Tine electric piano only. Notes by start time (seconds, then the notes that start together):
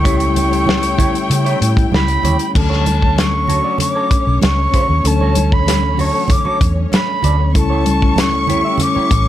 0.03 G3 A3 C#4 E4 G4
2.53 E3 A3 C#4 D4 A4
2.60 F#3
5.03 E3 A3 C#4 D4 A4
5.09 F#3
7.54 G3 A3 C#4 E4 A4